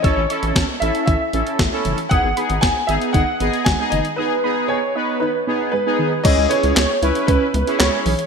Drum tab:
CC |----------------|----------------|----------------|x---------------|
HH |x-xxx-xxx-xxx-xx|x-xxx-xxx-xxx-xx|----------------|x-xxx-xxx-xxx-ox|
CP |----------------|----------------|----------------|----x-------x---|
SD |----o-------o---|----o-------o---|----------------|----o-------o---|
BD |o---o---o---o---|o---o---o---o---|----------------|o-------o-------|